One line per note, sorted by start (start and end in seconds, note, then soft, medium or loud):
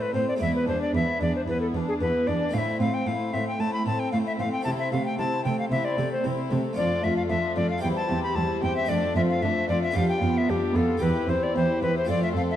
0.00 0.12 A2 soft
0.00 0.14 A3 soft
0.00 0.35 A3 soft
0.00 0.36 C4 soft
0.00 0.14 E4 soft
0.00 0.36 E4 soft
0.00 0.14 B4 soft
0.00 0.14 C5 soft
0.14 0.22 A2 soft
0.14 0.38 A2 soft
0.14 0.41 C4 soft
0.14 0.41 A4 soft
0.14 0.27 C5 medium
0.28 0.34 D5 medium
0.36 2.48 G#3 soft
0.36 0.66 B3 soft
0.36 2.49 D4 soft
0.36 2.50 E4 soft
0.41 0.65 E2 soft
0.41 0.49 E2 soft
0.41 0.66 E4 soft
0.41 0.66 B4 soft
0.41 0.54 E5 medium
0.55 0.68 B4 soft
0.67 0.75 E2 soft
0.67 0.92 E2 soft
0.67 0.95 D4 soft
0.67 0.95 G#4 soft
0.67 0.81 C5 medium
0.82 0.94 D5 medium
0.94 1.02 E2 soft
0.94 1.19 E2 soft
0.94 1.21 B3 soft
0.94 1.22 E4 soft
0.94 1.21 B4 soft
0.94 1.21 E5 medium
1.21 1.29 E2 soft
1.21 1.45 E2 soft
1.21 1.48 D4 soft
1.21 1.48 G#4 soft
1.21 1.35 D5 medium
1.36 1.42 C5 medium
1.47 1.55 E2 soft
1.47 1.72 E2 soft
1.47 1.73 B3 soft
1.47 1.73 E4 soft
1.47 1.73 B4 soft
1.47 1.60 B4 medium
1.61 1.67 A4 medium
1.74 1.82 E2 soft
1.74 1.99 E2 soft
1.74 2.01 D4 soft
1.74 2.02 D4 soft
1.74 2.01 G#4 soft
1.88 1.94 G#4 medium
2.01 2.09 E2 soft
2.01 2.25 E2 soft
2.01 2.28 B3 soft
2.01 2.28 E4 soft
2.01 2.29 B4 medium
2.01 2.28 B4 soft
2.27 2.35 E2 soft
2.27 2.52 E2 soft
2.27 2.54 D4 soft
2.27 2.55 D4 soft
2.27 2.55 G#4 soft
2.27 2.55 D5 medium
2.49 4.60 A3 soft
2.49 4.61 C4 soft
2.49 4.61 E4 soft
2.53 2.78 A2 soft
2.53 2.61 A2 soft
2.53 2.79 A3 soft
2.53 2.79 E4 soft
2.53 2.79 C5 soft
2.53 2.59 F5 medium
2.58 2.80 E5 medium
2.80 2.88 A2 soft
2.80 3.05 A2 soft
2.80 3.07 C4 soft
2.80 3.08 C4 soft
2.80 3.08 A4 soft
2.80 2.95 F5 medium
2.94 3.09 G5 medium
3.06 3.15 A2 medium
3.06 3.31 A2 soft
3.06 3.34 A3 soft
3.06 3.34 E4 soft
3.06 3.35 C5 soft
3.06 3.35 F5 medium
3.33 3.58 A2 soft
3.33 3.42 A2 soft
3.33 3.60 C4 soft
3.33 3.61 A4 soft
3.33 3.47 E5 medium
3.48 3.62 G5 medium
3.59 3.68 A2 soft
3.59 3.84 A2 soft
3.59 3.84 A3 soft
3.59 3.85 E4 soft
3.59 3.85 C5 soft
3.59 3.73 A5 medium
3.73 3.86 B5 medium
3.86 4.10 A2 soft
3.86 3.94 A2 soft
3.86 4.13 C4 soft
3.86 4.14 A4 soft
3.86 4.01 A5 medium
3.99 4.11 G5 medium
4.12 4.21 A2 soft
4.12 4.37 A2 soft
4.12 4.40 A3 soft
4.12 4.40 E4 soft
4.12 4.40 C5 soft
4.12 4.18 F5 medium
4.27 4.33 E5 medium
4.39 4.47 A2 medium
4.39 4.63 A2 soft
4.39 4.66 C4 soft
4.39 4.65 C4 soft
4.39 4.66 A4 soft
4.39 4.52 F5 medium
4.52 4.64 G5 medium
4.61 6.71 A3 soft
4.61 6.72 C4 soft
4.61 6.72 E4 soft
4.61 4.70 A5 medium
4.66 4.90 C3 soft
4.66 4.74 C3 medium
4.66 4.91 C4 soft
4.66 4.91 E4 soft
4.66 4.91 C5 soft
4.79 4.91 E5 medium
4.92 5.00 C3 soft
4.92 5.16 C3 soft
4.92 5.19 A3 soft
4.92 5.19 C4 soft
4.92 5.20 A4 soft
4.92 5.05 F5 medium
5.06 5.18 G5 medium
5.18 5.27 C3 soft
5.18 5.43 C3 soft
5.18 5.46 C4 soft
5.18 5.45 E4 soft
5.18 5.46 C5 soft
5.18 5.44 A5 medium
5.44 5.53 C3 soft
5.44 5.69 C3 soft
5.44 5.72 A3 soft
5.44 5.72 C4 soft
5.44 5.72 A4 soft
5.44 5.58 G5 medium
5.59 5.65 F5 medium
5.71 5.79 C3 medium
5.71 5.96 C3 soft
5.71 5.97 C4 soft
5.71 5.96 E4 soft
5.71 5.97 C5 soft
5.71 5.86 E5 medium
5.85 6.11 D5 medium
5.98 6.22 C3 soft
5.98 6.07 C3 soft
5.98 6.25 A3 soft
5.98 6.25 C4 soft
5.98 6.25 A4 soft
6.12 6.25 C5 medium
6.24 6.48 C3 soft
6.24 6.33 C3 medium
6.24 6.51 C4 soft
6.24 6.51 E4 soft
6.24 6.51 C5 soft
6.51 6.75 C3 soft
6.51 6.59 C3 medium
6.51 6.78 A3 soft
6.51 6.78 C4 soft
6.51 6.78 A4 soft
6.73 7.02 F3 soft
6.73 7.78 A3 soft
6.73 7.78 D4 soft
6.73 7.02 D4 soft
6.73 7.79 F4 soft
6.77 6.86 F2 medium
6.77 7.01 F2 soft
6.77 7.02 F4 soft
6.77 7.05 D5 medium
7.03 7.28 F2 soft
7.03 7.13 F2 soft
7.03 7.30 A3 soft
7.03 7.30 F4 soft
7.03 7.30 A4 soft
7.03 7.16 E5 medium
7.17 7.23 F5 medium
7.29 7.54 F2 soft
7.29 7.38 F2 medium
7.29 7.57 F3 soft
7.29 7.57 D4 soft
7.29 7.57 F4 soft
7.29 7.56 E5 medium
7.56 7.80 F2 soft
7.56 7.65 F2 medium
7.56 7.84 A3 soft
7.56 7.83 F4 soft
7.56 7.83 A4 soft
7.56 7.69 D5 medium
7.70 7.82 F5 medium
7.78 8.83 C4 soft
7.78 8.84 E4 soft
7.78 8.85 G4 soft
7.82 8.07 E2 soft
7.82 7.91 E2 medium
7.82 8.08 G3 soft
7.82 8.07 E4 soft
7.82 8.08 C5 soft
7.82 7.88 G5 medium
7.96 8.22 A5 medium
8.09 8.33 E2 soft
8.09 8.18 E2 medium
8.09 8.36 C4 soft
8.09 8.36 G4 soft
8.09 8.37 G4 soft
8.23 8.37 B5 medium
8.35 8.43 E2 medium
8.35 8.60 E2 soft
8.35 8.63 G3 soft
8.35 8.63 E4 soft
8.35 8.63 C5 soft
8.35 8.62 A5 medium
8.62 8.70 E2 medium
8.62 8.87 E2 soft
8.62 8.89 C4 soft
8.62 8.89 G4 soft
8.62 8.90 G4 soft
8.62 8.75 G5 medium
8.76 8.90 E5 medium
8.85 9.90 C4 soft
8.85 9.91 D4 soft
8.85 9.91 A4 soft
8.89 8.97 F2 medium
8.89 9.13 F2 soft
8.89 9.15 A3 medium
8.89 9.14 D4 soft
8.89 9.14 C5 soft
8.89 9.15 D5 medium
9.16 9.24 F2 medium
9.16 9.40 F2 soft
9.16 9.43 C4 soft
9.16 9.43 F4 soft
9.16 9.42 A4 soft
9.16 9.22 E5 medium
9.30 9.44 F5 medium
9.42 9.50 F2 medium
9.42 9.66 F2 soft
9.42 9.70 A3 soft
9.42 9.69 D4 soft
9.42 9.69 C5 soft
9.42 9.68 E5 medium
9.69 9.77 F2 medium
9.69 9.93 F2 soft
9.69 9.96 C4 soft
9.69 9.96 F4 soft
9.69 9.95 A4 soft
9.69 9.82 D5 medium
9.83 9.97 E5 medium
9.91 10.96 B3 soft
9.91 10.97 D4 soft
9.91 10.98 G4 soft
9.95 10.19 F2 soft
9.95 10.03 F2 medium
9.95 10.20 G3 soft
9.95 10.20 D4 soft
9.95 10.20 F4 soft
9.95 10.09 F5 medium
10.09 10.39 G5 medium
10.21 10.30 F2 medium
10.21 10.46 F2 soft
10.21 10.49 B3 medium
10.21 10.48 F4 soft
10.21 10.49 G4 soft
10.38 10.52 E5 medium
10.48 10.57 F2 medium
10.48 10.73 F2 soft
10.48 10.75 G3 soft
10.48 10.75 D4 medium
10.48 10.75 F4 soft
10.48 10.77 G4 medium
10.74 10.83 F2 medium
10.74 11.00 F2 soft
10.74 11.02 B3 soft
10.74 11.02 F4 soft
10.74 11.01 G4 soft
10.74 11.04 A4 medium
10.97 12.03 C4 soft
10.97 11.26 E4 medium
10.97 12.04 G4 soft
10.97 11.26 G4 medium
11.01 11.10 E2 medium
11.01 11.26 E2 soft
11.01 11.26 E4 medium
11.01 11.31 B4 medium
11.28 11.36 E2 soft
11.28 11.53 E2 soft
11.28 11.55 C4 soft
11.28 11.55 E4 soft
11.28 11.55 G4 soft
11.28 11.45 C5 medium
11.43 11.56 D5 medium
11.54 11.63 E2 medium
11.54 11.80 E2 soft
11.54 11.81 E4 soft
11.54 11.82 E4 soft
11.54 11.82 G4 soft
11.54 11.82 C5 medium
11.81 11.89 E2 soft
11.81 12.06 E2 soft
11.81 12.08 C4 soft
11.81 12.09 E4 soft
11.81 12.09 G4 soft
11.81 11.95 B4 medium
11.97 12.09 C5 medium
12.05 12.16 F2 medium
12.05 12.56 C4 soft
12.05 12.56 F4 soft
12.05 12.34 F4 soft
12.05 12.56 A4 soft
12.05 12.33 C5 soft
12.09 12.33 F2 soft
12.09 12.34 A3 soft
12.09 12.22 D5 medium
12.23 12.29 E5 medium
12.34 12.42 F2 medium
12.34 12.56 F2 soft
12.34 12.56 C4 soft
12.34 12.56 A4 soft
12.34 12.43 F5 medium
12.51 12.56 E5 medium